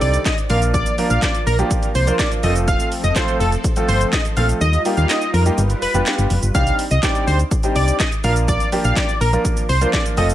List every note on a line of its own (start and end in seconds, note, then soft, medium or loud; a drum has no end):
0.00 0.18 C2 loud
0.00 0.48 D#3 medium
0.00 0.24 G3 medium
0.00 0.24 C4 medium
0.00 0.48 C4 medium
0.00 0.24 D4 medium
0.00 0.24 D#4 medium
0.00 0.24 A4 medium
0.00 2.40 D5 medium
0.00 0.22 D5 medium
0.00 open hi-hat medium
0.00 shaker medium
0.14 closed hi-hat medium
0.14 shaker medium
0.26 0.36 D#5 medium
0.26 kick loud
0.26 snare loud
0.26 clap loud
0.26 closed hi-hat medium
0.26 shaker medium
0.38 closed hi-hat medium
0.38 shaker medium
0.50 0.82 A#1 loud
0.50 0.88 F3 medium
0.50 4.57 F3 medium
0.50 0.89 A#3 medium
0.50 2.42 A#3 medium
0.50 0.89 D4 medium
0.50 0.89 F4 medium
0.50 0.89 A#4 medium
0.50 0.60 F5 medium
0.50 open hi-hat medium
0.50 shaker medium
0.62 closed hi-hat medium
0.62 shaker medium
0.74 0.95 D5 loud
0.74 kick loud
0.74 closed hi-hat medium
0.74 shaker medium
0.86 closed hi-hat medium
0.86 shaker medium
0.98 1.33 F3 medium
0.98 1.33 A#3 medium
0.98 1.33 D4 medium
0.98 1.33 F4 medium
0.98 1.33 A#4 loud
0.98 open hi-hat medium
0.98 shaker medium
1.10 1.18 A#1 medium
1.10 1.21 F5 medium
1.10 closed hi-hat soft
1.10 shaker medium
1.22 1.43 D5 medium
1.22 kick loud
1.22 snare medium
1.22 clap loud
1.22 closed hi-hat medium
1.22 shaker medium
1.35 closed hi-hat medium
1.35 shaker medium
1.47 1.63 A#1 loud
1.47 1.57 A#4 medium
1.47 open hi-hat medium
1.47 shaker medium
1.59 1.87 F3 medium
1.59 1.87 A#3 medium
1.59 1.87 D4 medium
1.59 1.87 F4 medium
1.59 1.87 G4 medium
1.59 closed hi-hat soft
1.59 shaker medium
1.71 kick loud
1.71 closed hi-hat medium
1.71 shaker medium
1.83 closed hi-hat medium
1.83 shaker medium
1.95 2.11 C2 medium
1.95 2.16 C5 medium
1.95 open hi-hat medium
1.95 shaker medium
2.07 2.42 F3 medium
2.07 2.42 A#3 medium
2.07 2.42 D4 medium
2.07 2.42 F4 medium
2.07 2.42 A#4 medium
2.07 closed hi-hat medium
2.07 shaker medium
2.19 2.30 D5 medium
2.19 kick loud
2.19 snare loud
2.19 clap loud
2.19 closed hi-hat medium
2.19 shaker medium
2.32 closed hi-hat medium
2.32 shaker medium
2.43 2.76 F1 loud
2.43 3.02 F3 medium
2.43 3.02 A3 medium
2.43 3.02 C4 medium
2.43 4.59 C4 medium
2.43 3.02 F4 medium
2.43 4.59 A4 medium
2.43 3.02 A4 medium
2.43 2.54 D#5 medium
2.43 open hi-hat medium
2.43 shaker medium
2.56 closed hi-hat medium
2.56 shaker medium
2.68 2.89 F5 loud
2.68 kick loud
2.68 closed hi-hat medium
2.68 shaker medium
2.80 closed hi-hat medium
2.80 shaker medium
2.92 open hi-hat medium
2.92 shaker medium
3.04 3.12 F1 loud
3.04 3.14 D#5 medium
3.04 closed hi-hat soft
3.04 shaker medium
3.16 3.51 F3 medium
3.16 3.51 A3 medium
3.16 3.51 C4 medium
3.16 3.51 F4 medium
3.16 3.51 A4 medium
3.16 3.37 C5 medium
3.16 kick loud
3.16 snare medium
3.16 clap loud
3.16 closed hi-hat medium
3.16 shaker medium
3.28 closed hi-hat medium
3.28 shaker medium
3.40 3.56 F1 loud
3.40 3.51 A4 medium
3.40 open hi-hat medium
3.40 shaker medium
3.52 closed hi-hat soft
3.52 shaker medium
3.64 kick loud
3.64 closed hi-hat medium
3.64 shaker medium
3.76 4.11 F3 medium
3.76 4.11 A3 medium
3.76 4.11 C4 medium
3.76 4.11 F4 medium
3.76 4.11 A4 medium
3.76 closed hi-hat medium
3.76 shaker medium
3.88 4.05 G1 loud
3.88 4.09 C5 loud
3.88 open hi-hat medium
3.88 shaker medium
4.01 closed hi-hat medium
4.01 shaker medium
4.13 4.23 D#5 medium
4.13 kick loud
4.13 snare loud
4.13 clap loud
4.13 closed hi-hat medium
4.13 shaker medium
4.25 closed hi-hat medium
4.25 shaker medium
4.37 4.53 A#1 loud
4.37 4.61 F3 medium
4.37 4.61 A3 medium
4.37 4.61 C4 medium
4.37 4.61 F4 medium
4.37 4.61 A4 medium
4.37 4.47 F5 medium
4.37 open hi-hat medium
4.37 shaker medium
4.49 closed hi-hat medium
4.49 shaker medium
4.61 4.77 D#2 loud
4.61 5.57 G3 medium
4.61 5.57 D#4 medium
4.61 6.53 F4 medium
4.61 4.82 D#5 loud
4.61 closed hi-hat medium
4.61 shaker medium
4.73 closed hi-hat medium
4.73 shaker medium
4.85 5.20 G3 medium
4.85 5.20 A#3 medium
4.85 5.20 D#4 medium
4.85 5.20 F4 medium
4.85 5.20 G4 medium
4.85 open hi-hat medium
4.85 shaker medium
4.97 5.06 D#2 loud
4.97 5.08 F5 medium
4.97 closed hi-hat soft
4.97 shaker medium
5.09 5.30 D#5 medium
5.09 snare medium
5.09 clap loud
5.09 closed hi-hat medium
5.09 shaker medium
5.22 closed hi-hat medium
5.22 shaker medium
5.34 5.50 F2 loud
5.34 5.44 A#4 medium
5.34 open hi-hat medium
5.34 shaker medium
5.46 5.58 G3 medium
5.46 5.58 A#3 medium
5.46 5.58 D#4 medium
5.46 5.58 F4 medium
5.46 5.58 G4 loud
5.46 closed hi-hat soft
5.46 shaker medium
5.58 5.74 G1 loud
5.58 6.54 G3 medium
5.58 6.54 B4 medium
5.58 closed hi-hat medium
5.58 shaker medium
5.70 closed hi-hat medium
5.70 shaker medium
5.82 5.87 F1 soft
5.82 6.03 B4 medium
5.82 open hi-hat medium
5.82 shaker medium
5.94 6.02 F1 medium
5.94 6.29 G3 medium
5.94 6.29 B3 medium
5.94 6.29 D4 medium
5.94 6.29 F4 medium
5.94 6.29 G4 medium
5.94 closed hi-hat medium
5.94 shaker medium
6.06 snare loud
6.06 clap loud
6.06 closed hi-hat medium
6.06 shaker medium
6.18 6.27 G1 medium
6.18 closed hi-hat medium
6.18 shaker medium
6.30 6.39 F1 loud
6.30 open hi-hat medium
6.30 shaker medium
6.43 6.51 G1 medium
6.43 closed hi-hat medium
6.43 shaker medium
6.55 6.71 C2 loud
6.55 6.82 G3 medium
6.55 6.82 C4 medium
6.55 6.83 D4 medium
6.55 6.83 D#4 medium
6.55 6.83 G4 medium
6.55 6.76 F5 loud
6.55 kick loud
6.55 closed hi-hat medium
6.55 shaker medium
6.67 closed hi-hat medium
6.67 shaker medium
6.79 open hi-hat medium
6.79 shaker medium
6.91 6.99 C2 loud
6.91 7.01 D#5 medium
6.91 closed hi-hat soft
6.91 shaker medium
7.03 7.38 G3 medium
7.03 7.38 C4 medium
7.03 7.38 D4 medium
7.03 7.38 D#4 medium
7.03 7.38 G4 medium
7.03 7.24 D5 medium
7.03 kick loud
7.03 snare medium
7.03 clap loud
7.03 closed hi-hat medium
7.03 shaker medium
7.15 closed hi-hat medium
7.15 shaker medium
7.27 7.44 D2 loud
7.27 7.38 C5 medium
7.27 open hi-hat medium
7.27 shaker medium
7.39 closed hi-hat soft
7.39 shaker medium
7.51 kick loud
7.51 closed hi-hat medium
7.51 shaker medium
7.63 7.98 G3 medium
7.63 7.98 C4 medium
7.63 7.98 D4 medium
7.63 7.98 D#4 medium
7.63 7.99 G4 medium
7.63 closed hi-hat medium
7.63 shaker medium
7.76 7.92 C2 medium
7.76 7.97 D5 medium
7.76 open hi-hat medium
7.76 shaker medium
7.88 closed hi-hat medium
7.88 shaker medium
8.00 8.10 D#5 medium
8.00 kick loud
8.00 snare loud
8.00 clap loud
8.00 closed hi-hat medium
8.00 shaker medium
8.12 closed hi-hat medium
8.12 shaker medium
8.24 8.57 A#1 loud
8.24 8.63 F3 medium
8.24 8.63 A#3 medium
8.24 8.63 D4 medium
8.24 8.63 F4 medium
8.24 8.63 A#4 medium
8.24 8.35 F5 medium
8.24 open hi-hat medium
8.24 shaker medium
8.36 closed hi-hat medium
8.36 shaker medium
8.48 8.69 D5 loud
8.48 kick loud
8.48 closed hi-hat medium
8.48 shaker medium
8.60 closed hi-hat medium
8.60 shaker medium
8.72 9.07 F3 medium
8.72 9.07 A#3 medium
8.72 9.07 D4 medium
8.72 9.07 F4 medium
8.72 9.07 G4 medium
8.72 open hi-hat medium
8.72 shaker medium
8.84 8.93 A#1 medium
8.84 8.95 F5 medium
8.84 closed hi-hat medium
8.84 shaker medium
8.96 9.18 D5 medium
8.96 kick loud
8.96 snare medium
8.96 clap loud
8.96 closed hi-hat medium
8.96 shaker medium
9.09 closed hi-hat medium
9.09 shaker medium
9.21 9.37 A#1 loud
9.21 9.31 A#4 medium
9.21 open hi-hat medium
9.21 shaker medium
9.33 9.61 F3 medium
9.33 9.61 A#3 medium
9.33 9.61 D4 medium
9.33 9.61 F4 medium
9.33 9.61 A#4 loud
9.33 closed hi-hat soft
9.33 shaker medium
9.45 kick loud
9.45 closed hi-hat medium
9.45 shaker medium
9.57 closed hi-hat medium
9.57 shaker medium
9.69 9.85 C2 medium
9.69 9.90 C5 medium
9.69 open hi-hat medium
9.69 shaker medium
9.81 10.16 F3 medium
9.81 10.16 A#3 medium
9.81 10.16 D4 medium
9.81 10.16 F4 medium
9.81 10.16 A#4 medium
9.81 closed hi-hat medium
9.81 shaker medium
9.93 10.04 D5 medium
9.93 kick loud
9.93 snare loud
9.93 clap loud
9.93 closed hi-hat medium
9.93 shaker medium
10.06 closed hi-hat medium
10.06 shaker medium
10.17 10.34 F1 loud
10.17 10.34 F3 medium
10.17 10.34 A3 medium
10.17 10.34 C4 medium
10.17 10.34 F4 medium
10.17 10.34 A4 medium
10.17 10.28 D#5 medium
10.17 open hi-hat medium
10.17 shaker medium
10.30 closed hi-hat medium
10.30 shaker medium